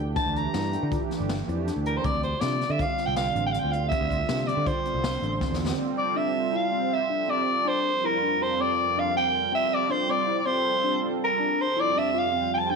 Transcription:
Already playing: D2
0.06 E3 A3 D4 G4
0.15 D4 A5, kick, closed hi-hat
0.26 D2
0.36 A#5, closed hi-hat
0.53 G2 E3 A3 D4 E4 G4, snare, closed hi-hat
0.72 D4, closed hi-hat
0.83 D3
0.90 E3 A3 D4 F4 G4, kick, closed hi-hat
1.10 D4, snare, closed hi-hat
1.20 G1
1.29 snare, closed hi-hat
1.39 E3 A3 D4 G4
1.48 F2 E4, closed hi-hat
1.66 D4, snare, closed hi-hat
1.75 D2 E3 A3
1.85 A#4, closed hi-hat
1.97 C5
2.03 D2 C4 D5, kick, closed hi-hat
2.13 D2
2.23 D3 G3 C4 F4 C5, closed hi-hat
2.40 C3 D4 D5, snare, closed hi-hat
2.60 D3 G3 C4 F4, snare, closed hi-hat
2.70 D3 E5
2.79 F4 F5, kick, closed hi-hat
2.98 D3 G3 C4 F4, snare, closed hi-hat
3.06 C2 G5
3.16 F5, snare, closed hi-hat
3.35 A1 D4, closed hi-hat
3.44 D3 G3 C4 F4 G5
3.52 C4 F5, closed hi-hat
3.59 G5
3.64 D2
3.72 F5, closed hi-hat
3.81 D3 G3 C4 F4
3.89 C4 E5, kick, closed hi-hat
4.01 D2
4.10 kick, closed hi-hat
4.29 C3 D3 G3 C4 D4 F4, snare, closed hi-hat
4.47 C4 D5, closed hi-hat
4.57 D3
4.66 D3 G3 C4 F4 C5, kick, closed hi-hat
4.85 C4, closed hi-hat
4.95 C2
5.04 snare, closed hi-hat
5.13 D3 G3 C4 D4
5.22 A1 D4, closed hi-hat
5.41 C4, kick, snare
5.49 E2 D3
5.54 snare
5.67 snare
5.77 G3 C4 F4 A4
5.98 D5
6.16 D4 E5
6.25 G3 C4 F4 A4
6.34 C4
6.52 E4 F5
6.62 G3 C4 F4 C5
6.72 C4
6.94 E5
7.10 G3 C4 D4 F4 A4
7.28 C4 D5
7.65 D4 C5
7.93 F2 G3 C4 F4 A#4
8.04 E4 A#4
8.23 D4
8.32 F2 G3 C4 F4 A4
8.41 F4 C5
8.60 C4 D5
8.79 F2 G3 C4 F4 A#4
8.97 D4 F5
9.15 F2 G3 C4 F4 A#4 G5
9.52 G3 C4 F4 A4 E5
9.74 D5
9.89 D4 C5
9.99 G3 C4 F4 C5
10.08 C4 D5
10.27 E4
10.37 G3 C4 F4 A4 D5
10.46 C4 C5
10.83 G3 C4 D4 F4 A4
11.03 C4
11.24 A#4
11.40 D4
11.61 C5
11.67 F2 G3 C4 F4 A4
11.77 E4 D5
11.96 D4 E5
12.06 F2 G3 C4 F4 G4
12.14 F4
12.19 F5
12.33 C4
12.52 F2 G3 C4 F4 A4 G5
12.59 A5
12.70 D4 G5

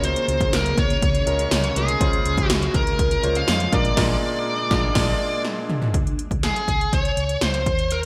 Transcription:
Already playing: C#2 C#3 G#3 A#3 C#4 F4 G#4 A#4
0.04 C5, closed hi-hat
0.16 closed hi-hat
0.28 C#2, closed hi-hat
0.41 kick, closed hi-hat
0.53 C#2 A#4, snare, closed hi-hat, tambourine
0.66 closed hi-hat
0.78 C#2 C#5, kick, closed hi-hat
0.90 closed hi-hat
1.02 C#2, kick, closed hi-hat
1.15 closed hi-hat
1.26 C#2 G#3 C#4 F4 A#4, closed hi-hat
1.39 closed hi-hat
1.51 C#2, snare, closed hi-hat, tambourine
1.64 closed hi-hat
1.76 C2 G#3 C#4 F4 G#4 A#4, closed hi-hat
1.88 closed hi-hat
2.00 C#2 C#3 G#3 C#4 F4 C5, kick, closed hi-hat
2.13 closed hi-hat
2.25 C#2, closed hi-hat
2.38 kick, closed hi-hat
2.48 C#2 F#4, snare, closed hi-hat, tambourine
2.62 closed hi-hat
2.74 C#2 A#4, kick, closed hi-hat
2.87 closed hi-hat
2.99 C#2, kick, closed hi-hat
3.11 closed hi-hat
3.23 C#2 G#3 C#4 F4 C5, closed hi-hat
3.35 F5, closed hi-hat
3.48 F2, snare, closed hi-hat, tambourine
3.60 closed hi-hat
3.72 A#1 A#2 G#3 A#3 D4 F4 A#4 D5, kick, closed hi-hat
3.85 closed hi-hat
3.96 A#1 A#2 G#3 D4 F4 A#4 D5, kick, snare, crash
4.70 A#1 G#3 D4 F4, kick, snare
4.95 A#1 G#3 D4 F4, kick, snare, crash
5.45 snare
5.70 mid tom
5.82 floor tom
5.94 C#2, kick, closed hi-hat
6.07 closed hi-hat
6.19 closed hi-hat
6.31 C#2, kick, closed hi-hat
6.43 G#4, snare, closed hi-hat
6.56 closed hi-hat
6.68 C#2, kick, closed hi-hat
6.81 closed hi-hat
6.93 C#2 C#5, kick, closed hi-hat
7.05 closed hi-hat
7.17 C#2, closed hi-hat
7.29 closed hi-hat
7.41 C#2 C5, snare, closed hi-hat
7.54 closed hi-hat
7.66 D#2, kick, closed hi-hat
7.79 closed hi-hat
7.91 A#4, closed hi-hat

